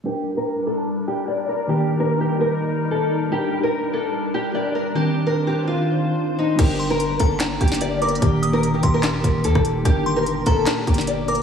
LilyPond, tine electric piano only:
\new Staff \with { instrumentName = "Tine electric piano" } { \time 4/4 \key g \minor \tempo 4 = 147 <g d' bes'>1 | <ees bes g'>1 | <g d' bes'>2. <g d' bes'>4 | <ees c' d'>1 |
<g d' bes'>1 | <ees bes g'>1 | <g d' bes'>1 | }